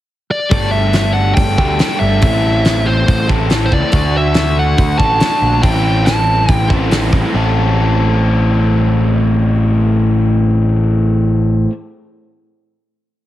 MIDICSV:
0, 0, Header, 1, 6, 480
1, 0, Start_track
1, 0, Tempo, 426743
1, 574, Time_signature, 4, 2, 24, 8
1, 14922, End_track
2, 0, Start_track
2, 0, Title_t, "Lead electric guitar"
2, 0, Program_c, 0, 29
2, 349, Note_on_c, 0, 74, 71
2, 790, Note_off_c, 0, 74, 0
2, 801, Note_on_c, 0, 76, 87
2, 1271, Note_off_c, 0, 76, 0
2, 1275, Note_on_c, 0, 78, 100
2, 1510, Note_off_c, 0, 78, 0
2, 1515, Note_on_c, 0, 79, 92
2, 1771, Note_off_c, 0, 79, 0
2, 1785, Note_on_c, 0, 79, 92
2, 2242, Note_off_c, 0, 79, 0
2, 2246, Note_on_c, 0, 76, 89
2, 3226, Note_on_c, 0, 72, 78
2, 3245, Note_off_c, 0, 76, 0
2, 3672, Note_off_c, 0, 72, 0
2, 4115, Note_on_c, 0, 72, 51
2, 4189, Note_off_c, 0, 72, 0
2, 4198, Note_on_c, 0, 74, 76
2, 4686, Note_off_c, 0, 74, 0
2, 4692, Note_on_c, 0, 76, 86
2, 5126, Note_off_c, 0, 76, 0
2, 5168, Note_on_c, 0, 78, 94
2, 5601, Note_off_c, 0, 78, 0
2, 5606, Note_on_c, 0, 81, 102
2, 6327, Note_off_c, 0, 81, 0
2, 6331, Note_on_c, 0, 79, 99
2, 6557, Note_off_c, 0, 79, 0
2, 6570, Note_on_c, 0, 79, 83
2, 6817, Note_off_c, 0, 79, 0
2, 6821, Note_on_c, 0, 81, 77
2, 7339, Note_off_c, 0, 81, 0
2, 7339, Note_on_c, 0, 79, 77
2, 7497, Note_off_c, 0, 79, 0
2, 14922, End_track
3, 0, Start_track
3, 0, Title_t, "Overdriven electric guitar"
3, 0, Program_c, 1, 29
3, 588, Note_on_c, 1, 69, 95
3, 1772, Note_off_c, 1, 69, 0
3, 1776, Note_on_c, 1, 69, 73
3, 2041, Note_off_c, 1, 69, 0
3, 2045, Note_on_c, 1, 69, 85
3, 2509, Note_off_c, 1, 69, 0
3, 14922, End_track
4, 0, Start_track
4, 0, Title_t, "Overdriven electric guitar"
4, 0, Program_c, 2, 29
4, 573, Note_on_c, 2, 55, 70
4, 588, Note_on_c, 2, 57, 78
4, 592, Note_on_c, 2, 62, 85
4, 604, Note_on_c, 2, 67, 83
4, 1757, Note_off_c, 2, 67, 0
4, 1764, Note_off_c, 2, 55, 0
4, 1767, Note_off_c, 2, 62, 0
4, 1770, Note_on_c, 2, 67, 85
4, 1780, Note_on_c, 2, 62, 84
4, 1787, Note_off_c, 2, 57, 0
4, 1792, Note_on_c, 2, 57, 77
4, 1802, Note_on_c, 2, 55, 60
4, 1999, Note_off_c, 2, 55, 0
4, 2001, Note_off_c, 2, 67, 0
4, 2006, Note_off_c, 2, 62, 0
4, 2013, Note_on_c, 2, 55, 75
4, 2015, Note_off_c, 2, 57, 0
4, 2020, Note_on_c, 2, 57, 74
4, 2030, Note_on_c, 2, 62, 77
4, 2039, Note_on_c, 2, 67, 77
4, 2483, Note_off_c, 2, 55, 0
4, 2492, Note_off_c, 2, 62, 0
4, 2496, Note_off_c, 2, 67, 0
4, 2505, Note_on_c, 2, 45, 71
4, 2508, Note_off_c, 2, 57, 0
4, 2512, Note_on_c, 2, 57, 87
4, 2515, Note_on_c, 2, 52, 84
4, 2518, Note_on_c, 2, 60, 87
4, 2521, Note_on_c, 2, 64, 85
4, 2529, Note_on_c, 2, 69, 85
4, 3685, Note_off_c, 2, 64, 0
4, 3691, Note_off_c, 2, 45, 0
4, 3692, Note_off_c, 2, 69, 0
4, 3694, Note_off_c, 2, 60, 0
4, 3696, Note_off_c, 2, 52, 0
4, 3697, Note_on_c, 2, 69, 84
4, 3699, Note_on_c, 2, 64, 79
4, 3706, Note_off_c, 2, 57, 0
4, 3707, Note_on_c, 2, 60, 72
4, 3711, Note_on_c, 2, 57, 70
4, 3718, Note_on_c, 2, 52, 65
4, 3722, Note_on_c, 2, 45, 60
4, 3927, Note_off_c, 2, 64, 0
4, 3932, Note_off_c, 2, 52, 0
4, 3932, Note_off_c, 2, 60, 0
4, 3935, Note_off_c, 2, 45, 0
4, 3946, Note_on_c, 2, 52, 84
4, 3948, Note_on_c, 2, 45, 78
4, 3952, Note_off_c, 2, 57, 0
4, 3957, Note_on_c, 2, 57, 81
4, 3959, Note_off_c, 2, 69, 0
4, 3960, Note_on_c, 2, 60, 74
4, 3962, Note_on_c, 2, 64, 76
4, 3964, Note_on_c, 2, 69, 85
4, 4406, Note_off_c, 2, 52, 0
4, 4410, Note_on_c, 2, 50, 88
4, 4413, Note_off_c, 2, 45, 0
4, 4416, Note_off_c, 2, 57, 0
4, 4417, Note_off_c, 2, 60, 0
4, 4419, Note_off_c, 2, 64, 0
4, 4421, Note_on_c, 2, 57, 84
4, 4421, Note_on_c, 2, 62, 91
4, 4430, Note_on_c, 2, 66, 92
4, 4432, Note_off_c, 2, 69, 0
4, 4437, Note_on_c, 2, 69, 100
4, 5595, Note_off_c, 2, 62, 0
4, 5595, Note_off_c, 2, 69, 0
4, 5596, Note_off_c, 2, 66, 0
4, 5599, Note_on_c, 2, 69, 79
4, 5604, Note_off_c, 2, 50, 0
4, 5609, Note_on_c, 2, 62, 77
4, 5610, Note_on_c, 2, 66, 80
4, 5615, Note_off_c, 2, 57, 0
4, 5619, Note_on_c, 2, 57, 70
4, 5623, Note_on_c, 2, 50, 63
4, 5819, Note_off_c, 2, 50, 0
4, 5830, Note_off_c, 2, 57, 0
4, 5830, Note_off_c, 2, 62, 0
4, 5833, Note_on_c, 2, 50, 83
4, 5834, Note_on_c, 2, 57, 70
4, 5840, Note_off_c, 2, 66, 0
4, 5844, Note_on_c, 2, 62, 74
4, 5853, Note_off_c, 2, 69, 0
4, 5854, Note_on_c, 2, 66, 81
4, 5858, Note_on_c, 2, 69, 84
4, 6313, Note_on_c, 2, 45, 82
4, 6314, Note_off_c, 2, 50, 0
4, 6319, Note_off_c, 2, 57, 0
4, 6319, Note_on_c, 2, 52, 85
4, 6320, Note_off_c, 2, 62, 0
4, 6324, Note_on_c, 2, 57, 84
4, 6325, Note_off_c, 2, 66, 0
4, 6333, Note_on_c, 2, 60, 98
4, 6335, Note_on_c, 2, 64, 90
4, 6339, Note_off_c, 2, 69, 0
4, 6343, Note_on_c, 2, 69, 83
4, 7500, Note_off_c, 2, 69, 0
4, 7506, Note_off_c, 2, 64, 0
4, 7512, Note_off_c, 2, 60, 0
4, 7513, Note_off_c, 2, 45, 0
4, 7513, Note_off_c, 2, 57, 0
4, 7513, Note_on_c, 2, 69, 81
4, 7516, Note_off_c, 2, 52, 0
4, 7519, Note_on_c, 2, 64, 71
4, 7525, Note_on_c, 2, 60, 78
4, 7526, Note_on_c, 2, 57, 65
4, 7536, Note_on_c, 2, 52, 72
4, 7544, Note_on_c, 2, 45, 63
4, 7748, Note_off_c, 2, 45, 0
4, 7749, Note_off_c, 2, 52, 0
4, 7754, Note_off_c, 2, 69, 0
4, 7757, Note_off_c, 2, 64, 0
4, 7760, Note_off_c, 2, 57, 0
4, 7760, Note_off_c, 2, 60, 0
4, 7761, Note_on_c, 2, 45, 74
4, 7762, Note_on_c, 2, 52, 68
4, 7774, Note_on_c, 2, 57, 74
4, 7775, Note_on_c, 2, 64, 75
4, 7778, Note_on_c, 2, 60, 75
4, 7785, Note_on_c, 2, 69, 76
4, 8230, Note_off_c, 2, 45, 0
4, 8238, Note_off_c, 2, 52, 0
4, 8243, Note_off_c, 2, 57, 0
4, 8243, Note_on_c, 2, 45, 85
4, 8244, Note_off_c, 2, 64, 0
4, 8245, Note_off_c, 2, 60, 0
4, 8249, Note_off_c, 2, 69, 0
4, 8253, Note_on_c, 2, 52, 91
4, 8270, Note_on_c, 2, 57, 97
4, 8271, Note_on_c, 2, 60, 82
4, 8283, Note_on_c, 2, 64, 94
4, 8290, Note_on_c, 2, 69, 100
4, 13145, Note_off_c, 2, 45, 0
4, 13155, Note_off_c, 2, 52, 0
4, 13172, Note_off_c, 2, 57, 0
4, 13173, Note_off_c, 2, 60, 0
4, 13184, Note_off_c, 2, 64, 0
4, 13191, Note_off_c, 2, 69, 0
4, 14922, End_track
5, 0, Start_track
5, 0, Title_t, "Picked electric bass"
5, 0, Program_c, 3, 34
5, 572, Note_on_c, 3, 31, 91
5, 1492, Note_off_c, 3, 31, 0
5, 1542, Note_on_c, 3, 31, 76
5, 1769, Note_off_c, 3, 31, 0
5, 1779, Note_on_c, 3, 38, 65
5, 2007, Note_off_c, 3, 38, 0
5, 2262, Note_on_c, 3, 31, 84
5, 2490, Note_off_c, 3, 31, 0
5, 2504, Note_on_c, 3, 33, 92
5, 3420, Note_off_c, 3, 33, 0
5, 3465, Note_on_c, 3, 33, 85
5, 3693, Note_off_c, 3, 33, 0
5, 3710, Note_on_c, 3, 33, 72
5, 4164, Note_off_c, 3, 33, 0
5, 4184, Note_on_c, 3, 37, 79
5, 4298, Note_off_c, 3, 37, 0
5, 4414, Note_on_c, 3, 38, 100
5, 5335, Note_off_c, 3, 38, 0
5, 5382, Note_on_c, 3, 38, 85
5, 5608, Note_off_c, 3, 38, 0
5, 5614, Note_on_c, 3, 33, 72
5, 5848, Note_off_c, 3, 33, 0
5, 6094, Note_on_c, 3, 34, 89
5, 6327, Note_off_c, 3, 34, 0
5, 6339, Note_on_c, 3, 33, 94
5, 7256, Note_off_c, 3, 33, 0
5, 7296, Note_on_c, 3, 33, 90
5, 7527, Note_off_c, 3, 33, 0
5, 7537, Note_on_c, 3, 33, 75
5, 7995, Note_off_c, 3, 33, 0
5, 8015, Note_on_c, 3, 33, 72
5, 8133, Note_off_c, 3, 33, 0
5, 8254, Note_on_c, 3, 33, 92
5, 13111, Note_off_c, 3, 33, 0
5, 14922, End_track
6, 0, Start_track
6, 0, Title_t, "Drums"
6, 575, Note_on_c, 9, 46, 46
6, 577, Note_on_c, 9, 36, 102
6, 687, Note_off_c, 9, 46, 0
6, 689, Note_off_c, 9, 36, 0
6, 1048, Note_on_c, 9, 46, 46
6, 1057, Note_on_c, 9, 38, 95
6, 1161, Note_off_c, 9, 46, 0
6, 1170, Note_off_c, 9, 38, 0
6, 1538, Note_on_c, 9, 46, 51
6, 1540, Note_on_c, 9, 36, 99
6, 1651, Note_off_c, 9, 46, 0
6, 1653, Note_off_c, 9, 36, 0
6, 1781, Note_on_c, 9, 36, 83
6, 1893, Note_off_c, 9, 36, 0
6, 2016, Note_on_c, 9, 46, 46
6, 2025, Note_on_c, 9, 38, 91
6, 2129, Note_off_c, 9, 46, 0
6, 2138, Note_off_c, 9, 38, 0
6, 2495, Note_on_c, 9, 46, 48
6, 2503, Note_on_c, 9, 36, 101
6, 2607, Note_off_c, 9, 46, 0
6, 2615, Note_off_c, 9, 36, 0
6, 2980, Note_on_c, 9, 46, 45
6, 2989, Note_on_c, 9, 38, 108
6, 3092, Note_off_c, 9, 46, 0
6, 3101, Note_off_c, 9, 38, 0
6, 3468, Note_on_c, 9, 36, 105
6, 3472, Note_on_c, 9, 46, 44
6, 3581, Note_off_c, 9, 36, 0
6, 3585, Note_off_c, 9, 46, 0
6, 3706, Note_on_c, 9, 36, 80
6, 3818, Note_off_c, 9, 36, 0
6, 3937, Note_on_c, 9, 46, 37
6, 3946, Note_on_c, 9, 38, 90
6, 4049, Note_off_c, 9, 46, 0
6, 4058, Note_off_c, 9, 38, 0
6, 4183, Note_on_c, 9, 36, 68
6, 4296, Note_off_c, 9, 36, 0
6, 4408, Note_on_c, 9, 46, 46
6, 4421, Note_on_c, 9, 36, 101
6, 4520, Note_off_c, 9, 46, 0
6, 4534, Note_off_c, 9, 36, 0
6, 4886, Note_on_c, 9, 46, 46
6, 4895, Note_on_c, 9, 38, 105
6, 4999, Note_off_c, 9, 46, 0
6, 5008, Note_off_c, 9, 38, 0
6, 5376, Note_on_c, 9, 46, 44
6, 5381, Note_on_c, 9, 36, 94
6, 5489, Note_off_c, 9, 46, 0
6, 5493, Note_off_c, 9, 36, 0
6, 5619, Note_on_c, 9, 36, 84
6, 5732, Note_off_c, 9, 36, 0
6, 5853, Note_on_c, 9, 46, 49
6, 5862, Note_on_c, 9, 38, 92
6, 5966, Note_off_c, 9, 46, 0
6, 5975, Note_off_c, 9, 38, 0
6, 6336, Note_on_c, 9, 46, 54
6, 6337, Note_on_c, 9, 36, 97
6, 6449, Note_off_c, 9, 36, 0
6, 6449, Note_off_c, 9, 46, 0
6, 6818, Note_on_c, 9, 46, 45
6, 6827, Note_on_c, 9, 38, 90
6, 6931, Note_off_c, 9, 46, 0
6, 6940, Note_off_c, 9, 38, 0
6, 7294, Note_on_c, 9, 46, 44
6, 7296, Note_on_c, 9, 36, 96
6, 7407, Note_off_c, 9, 46, 0
6, 7409, Note_off_c, 9, 36, 0
6, 7538, Note_on_c, 9, 36, 81
6, 7650, Note_off_c, 9, 36, 0
6, 7777, Note_on_c, 9, 46, 42
6, 7786, Note_on_c, 9, 38, 91
6, 7890, Note_off_c, 9, 46, 0
6, 7899, Note_off_c, 9, 38, 0
6, 8017, Note_on_c, 9, 36, 78
6, 8129, Note_off_c, 9, 36, 0
6, 14922, End_track
0, 0, End_of_file